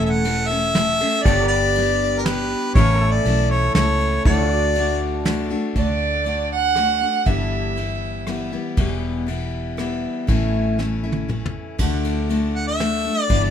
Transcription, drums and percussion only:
0, 0, Header, 1, 2, 480
1, 0, Start_track
1, 0, Key_signature, 2, "major"
1, 0, Tempo, 501672
1, 1196, Time_signature, 3, 2, 24, 8
1, 12921, End_track
2, 0, Start_track
2, 0, Title_t, "Drums"
2, 236, Note_on_c, 9, 51, 67
2, 332, Note_off_c, 9, 51, 0
2, 716, Note_on_c, 9, 38, 89
2, 716, Note_on_c, 9, 51, 70
2, 812, Note_off_c, 9, 38, 0
2, 812, Note_off_c, 9, 51, 0
2, 961, Note_on_c, 9, 51, 68
2, 1056, Note_off_c, 9, 51, 0
2, 1201, Note_on_c, 9, 36, 120
2, 1202, Note_on_c, 9, 51, 70
2, 1297, Note_off_c, 9, 36, 0
2, 1298, Note_off_c, 9, 51, 0
2, 1679, Note_on_c, 9, 51, 64
2, 1774, Note_off_c, 9, 51, 0
2, 2159, Note_on_c, 9, 38, 97
2, 2159, Note_on_c, 9, 51, 65
2, 2254, Note_off_c, 9, 38, 0
2, 2254, Note_off_c, 9, 51, 0
2, 2635, Note_on_c, 9, 51, 63
2, 2636, Note_on_c, 9, 36, 126
2, 2731, Note_off_c, 9, 36, 0
2, 2731, Note_off_c, 9, 51, 0
2, 3111, Note_on_c, 9, 51, 66
2, 3207, Note_off_c, 9, 51, 0
2, 3586, Note_on_c, 9, 38, 89
2, 3586, Note_on_c, 9, 51, 64
2, 3682, Note_off_c, 9, 38, 0
2, 3682, Note_off_c, 9, 51, 0
2, 3832, Note_on_c, 9, 51, 63
2, 3928, Note_off_c, 9, 51, 0
2, 4067, Note_on_c, 9, 51, 65
2, 4071, Note_on_c, 9, 36, 112
2, 4163, Note_off_c, 9, 51, 0
2, 4166, Note_off_c, 9, 36, 0
2, 4547, Note_on_c, 9, 51, 66
2, 4643, Note_off_c, 9, 51, 0
2, 5028, Note_on_c, 9, 38, 91
2, 5028, Note_on_c, 9, 51, 70
2, 5123, Note_off_c, 9, 38, 0
2, 5123, Note_off_c, 9, 51, 0
2, 5506, Note_on_c, 9, 51, 61
2, 5508, Note_on_c, 9, 36, 103
2, 5602, Note_off_c, 9, 51, 0
2, 5604, Note_off_c, 9, 36, 0
2, 5987, Note_on_c, 9, 51, 56
2, 6083, Note_off_c, 9, 51, 0
2, 6464, Note_on_c, 9, 37, 74
2, 6464, Note_on_c, 9, 51, 54
2, 6559, Note_off_c, 9, 37, 0
2, 6559, Note_off_c, 9, 51, 0
2, 6943, Note_on_c, 9, 51, 57
2, 6950, Note_on_c, 9, 36, 97
2, 7039, Note_off_c, 9, 51, 0
2, 7046, Note_off_c, 9, 36, 0
2, 7435, Note_on_c, 9, 51, 55
2, 7530, Note_off_c, 9, 51, 0
2, 7911, Note_on_c, 9, 37, 77
2, 7911, Note_on_c, 9, 51, 59
2, 8006, Note_off_c, 9, 37, 0
2, 8006, Note_off_c, 9, 51, 0
2, 8391, Note_on_c, 9, 51, 60
2, 8395, Note_on_c, 9, 36, 104
2, 8487, Note_off_c, 9, 51, 0
2, 8491, Note_off_c, 9, 36, 0
2, 8875, Note_on_c, 9, 51, 57
2, 8970, Note_off_c, 9, 51, 0
2, 9360, Note_on_c, 9, 37, 78
2, 9360, Note_on_c, 9, 51, 57
2, 9455, Note_off_c, 9, 37, 0
2, 9455, Note_off_c, 9, 51, 0
2, 9839, Note_on_c, 9, 51, 60
2, 9841, Note_on_c, 9, 36, 103
2, 9935, Note_off_c, 9, 51, 0
2, 9936, Note_off_c, 9, 36, 0
2, 10321, Note_on_c, 9, 38, 50
2, 10417, Note_off_c, 9, 38, 0
2, 10642, Note_on_c, 9, 48, 65
2, 10738, Note_off_c, 9, 48, 0
2, 10805, Note_on_c, 9, 47, 60
2, 10901, Note_off_c, 9, 47, 0
2, 10960, Note_on_c, 9, 45, 80
2, 11056, Note_off_c, 9, 45, 0
2, 11280, Note_on_c, 9, 49, 95
2, 11282, Note_on_c, 9, 36, 102
2, 11375, Note_off_c, 9, 49, 0
2, 11377, Note_off_c, 9, 36, 0
2, 11524, Note_on_c, 9, 51, 61
2, 11619, Note_off_c, 9, 51, 0
2, 11770, Note_on_c, 9, 51, 64
2, 11865, Note_off_c, 9, 51, 0
2, 12249, Note_on_c, 9, 38, 84
2, 12249, Note_on_c, 9, 51, 63
2, 12344, Note_off_c, 9, 38, 0
2, 12344, Note_off_c, 9, 51, 0
2, 12725, Note_on_c, 9, 36, 109
2, 12725, Note_on_c, 9, 51, 68
2, 12820, Note_off_c, 9, 51, 0
2, 12821, Note_off_c, 9, 36, 0
2, 12921, End_track
0, 0, End_of_file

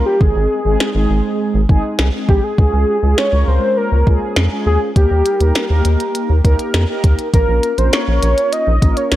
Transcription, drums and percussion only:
0, 0, Header, 1, 2, 480
1, 0, Start_track
1, 0, Tempo, 594059
1, 167, Time_signature, 4, 2, 24, 8
1, 7401, End_track
2, 0, Start_track
2, 0, Title_t, "Drums"
2, 167, Note_on_c, 9, 36, 108
2, 248, Note_off_c, 9, 36, 0
2, 649, Note_on_c, 9, 38, 116
2, 730, Note_off_c, 9, 38, 0
2, 1368, Note_on_c, 9, 36, 86
2, 1449, Note_off_c, 9, 36, 0
2, 1606, Note_on_c, 9, 38, 116
2, 1687, Note_off_c, 9, 38, 0
2, 1848, Note_on_c, 9, 36, 94
2, 1929, Note_off_c, 9, 36, 0
2, 2088, Note_on_c, 9, 36, 109
2, 2168, Note_off_c, 9, 36, 0
2, 2569, Note_on_c, 9, 38, 120
2, 2650, Note_off_c, 9, 38, 0
2, 3288, Note_on_c, 9, 36, 87
2, 3369, Note_off_c, 9, 36, 0
2, 3526, Note_on_c, 9, 38, 119
2, 3607, Note_off_c, 9, 38, 0
2, 4008, Note_on_c, 9, 36, 107
2, 4008, Note_on_c, 9, 42, 71
2, 4088, Note_off_c, 9, 36, 0
2, 4089, Note_off_c, 9, 42, 0
2, 4247, Note_on_c, 9, 42, 68
2, 4328, Note_off_c, 9, 42, 0
2, 4367, Note_on_c, 9, 42, 46
2, 4448, Note_off_c, 9, 42, 0
2, 4487, Note_on_c, 9, 42, 66
2, 4489, Note_on_c, 9, 38, 118
2, 4568, Note_off_c, 9, 42, 0
2, 4570, Note_off_c, 9, 38, 0
2, 4726, Note_on_c, 9, 42, 79
2, 4807, Note_off_c, 9, 42, 0
2, 4849, Note_on_c, 9, 42, 46
2, 4930, Note_off_c, 9, 42, 0
2, 4969, Note_on_c, 9, 42, 69
2, 5050, Note_off_c, 9, 42, 0
2, 5208, Note_on_c, 9, 36, 90
2, 5210, Note_on_c, 9, 42, 67
2, 5289, Note_off_c, 9, 36, 0
2, 5290, Note_off_c, 9, 42, 0
2, 5327, Note_on_c, 9, 42, 49
2, 5408, Note_off_c, 9, 42, 0
2, 5446, Note_on_c, 9, 38, 113
2, 5449, Note_on_c, 9, 42, 75
2, 5527, Note_off_c, 9, 38, 0
2, 5530, Note_off_c, 9, 42, 0
2, 5687, Note_on_c, 9, 42, 78
2, 5688, Note_on_c, 9, 36, 95
2, 5768, Note_off_c, 9, 42, 0
2, 5769, Note_off_c, 9, 36, 0
2, 5807, Note_on_c, 9, 42, 50
2, 5887, Note_off_c, 9, 42, 0
2, 5928, Note_on_c, 9, 36, 109
2, 5928, Note_on_c, 9, 42, 70
2, 6009, Note_off_c, 9, 36, 0
2, 6009, Note_off_c, 9, 42, 0
2, 6167, Note_on_c, 9, 42, 66
2, 6248, Note_off_c, 9, 42, 0
2, 6287, Note_on_c, 9, 42, 48
2, 6368, Note_off_c, 9, 42, 0
2, 6407, Note_on_c, 9, 42, 64
2, 6409, Note_on_c, 9, 38, 117
2, 6488, Note_off_c, 9, 42, 0
2, 6490, Note_off_c, 9, 38, 0
2, 6646, Note_on_c, 9, 42, 83
2, 6727, Note_off_c, 9, 42, 0
2, 6769, Note_on_c, 9, 42, 48
2, 6850, Note_off_c, 9, 42, 0
2, 6889, Note_on_c, 9, 42, 72
2, 6970, Note_off_c, 9, 42, 0
2, 7128, Note_on_c, 9, 36, 90
2, 7129, Note_on_c, 9, 42, 68
2, 7209, Note_off_c, 9, 36, 0
2, 7210, Note_off_c, 9, 42, 0
2, 7247, Note_on_c, 9, 42, 51
2, 7328, Note_off_c, 9, 42, 0
2, 7366, Note_on_c, 9, 38, 118
2, 7369, Note_on_c, 9, 42, 75
2, 7401, Note_off_c, 9, 38, 0
2, 7401, Note_off_c, 9, 42, 0
2, 7401, End_track
0, 0, End_of_file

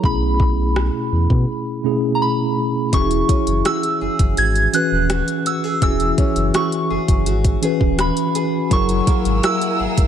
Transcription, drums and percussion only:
0, 0, Header, 1, 2, 480
1, 0, Start_track
1, 0, Key_signature, 4, "major"
1, 0, Tempo, 722892
1, 25, Time_signature, 4, 2, 24, 8
1, 6689, End_track
2, 0, Start_track
2, 0, Title_t, "Drums"
2, 24, Note_on_c, 9, 36, 101
2, 90, Note_off_c, 9, 36, 0
2, 264, Note_on_c, 9, 36, 93
2, 330, Note_off_c, 9, 36, 0
2, 506, Note_on_c, 9, 37, 103
2, 573, Note_off_c, 9, 37, 0
2, 864, Note_on_c, 9, 36, 83
2, 930, Note_off_c, 9, 36, 0
2, 1944, Note_on_c, 9, 36, 99
2, 1944, Note_on_c, 9, 42, 70
2, 2011, Note_off_c, 9, 36, 0
2, 2011, Note_off_c, 9, 42, 0
2, 2063, Note_on_c, 9, 42, 47
2, 2130, Note_off_c, 9, 42, 0
2, 2184, Note_on_c, 9, 36, 98
2, 2185, Note_on_c, 9, 42, 67
2, 2251, Note_off_c, 9, 36, 0
2, 2251, Note_off_c, 9, 42, 0
2, 2304, Note_on_c, 9, 42, 46
2, 2370, Note_off_c, 9, 42, 0
2, 2425, Note_on_c, 9, 42, 69
2, 2427, Note_on_c, 9, 37, 103
2, 2491, Note_off_c, 9, 42, 0
2, 2494, Note_off_c, 9, 37, 0
2, 2545, Note_on_c, 9, 42, 42
2, 2612, Note_off_c, 9, 42, 0
2, 2784, Note_on_c, 9, 36, 84
2, 2784, Note_on_c, 9, 42, 58
2, 2851, Note_off_c, 9, 36, 0
2, 2851, Note_off_c, 9, 42, 0
2, 2904, Note_on_c, 9, 42, 58
2, 2970, Note_off_c, 9, 42, 0
2, 3025, Note_on_c, 9, 42, 45
2, 3091, Note_off_c, 9, 42, 0
2, 3144, Note_on_c, 9, 42, 72
2, 3211, Note_off_c, 9, 42, 0
2, 3384, Note_on_c, 9, 42, 67
2, 3385, Note_on_c, 9, 37, 101
2, 3451, Note_off_c, 9, 42, 0
2, 3452, Note_off_c, 9, 37, 0
2, 3504, Note_on_c, 9, 42, 47
2, 3571, Note_off_c, 9, 42, 0
2, 3625, Note_on_c, 9, 42, 64
2, 3692, Note_off_c, 9, 42, 0
2, 3864, Note_on_c, 9, 36, 102
2, 3864, Note_on_c, 9, 42, 68
2, 3930, Note_off_c, 9, 36, 0
2, 3930, Note_off_c, 9, 42, 0
2, 3983, Note_on_c, 9, 42, 46
2, 4050, Note_off_c, 9, 42, 0
2, 4103, Note_on_c, 9, 42, 67
2, 4104, Note_on_c, 9, 36, 102
2, 4169, Note_off_c, 9, 42, 0
2, 4170, Note_off_c, 9, 36, 0
2, 4223, Note_on_c, 9, 42, 45
2, 4289, Note_off_c, 9, 42, 0
2, 4344, Note_on_c, 9, 42, 67
2, 4347, Note_on_c, 9, 37, 104
2, 4410, Note_off_c, 9, 42, 0
2, 4413, Note_off_c, 9, 37, 0
2, 4465, Note_on_c, 9, 42, 43
2, 4531, Note_off_c, 9, 42, 0
2, 4704, Note_on_c, 9, 36, 87
2, 4704, Note_on_c, 9, 42, 56
2, 4770, Note_off_c, 9, 36, 0
2, 4770, Note_off_c, 9, 42, 0
2, 4823, Note_on_c, 9, 42, 60
2, 4889, Note_off_c, 9, 42, 0
2, 4943, Note_on_c, 9, 42, 46
2, 4944, Note_on_c, 9, 36, 91
2, 5010, Note_off_c, 9, 36, 0
2, 5010, Note_off_c, 9, 42, 0
2, 5064, Note_on_c, 9, 42, 72
2, 5130, Note_off_c, 9, 42, 0
2, 5184, Note_on_c, 9, 36, 93
2, 5250, Note_off_c, 9, 36, 0
2, 5303, Note_on_c, 9, 42, 64
2, 5304, Note_on_c, 9, 37, 98
2, 5369, Note_off_c, 9, 42, 0
2, 5370, Note_off_c, 9, 37, 0
2, 5423, Note_on_c, 9, 42, 49
2, 5489, Note_off_c, 9, 42, 0
2, 5545, Note_on_c, 9, 42, 62
2, 5611, Note_off_c, 9, 42, 0
2, 5784, Note_on_c, 9, 36, 103
2, 5784, Note_on_c, 9, 42, 69
2, 5850, Note_off_c, 9, 36, 0
2, 5850, Note_off_c, 9, 42, 0
2, 5902, Note_on_c, 9, 42, 48
2, 5968, Note_off_c, 9, 42, 0
2, 6024, Note_on_c, 9, 36, 98
2, 6024, Note_on_c, 9, 42, 71
2, 6090, Note_off_c, 9, 36, 0
2, 6090, Note_off_c, 9, 42, 0
2, 6144, Note_on_c, 9, 42, 45
2, 6210, Note_off_c, 9, 42, 0
2, 6264, Note_on_c, 9, 42, 66
2, 6267, Note_on_c, 9, 37, 106
2, 6331, Note_off_c, 9, 42, 0
2, 6333, Note_off_c, 9, 37, 0
2, 6384, Note_on_c, 9, 42, 45
2, 6451, Note_off_c, 9, 42, 0
2, 6624, Note_on_c, 9, 36, 89
2, 6624, Note_on_c, 9, 42, 58
2, 6689, Note_off_c, 9, 36, 0
2, 6689, Note_off_c, 9, 42, 0
2, 6689, End_track
0, 0, End_of_file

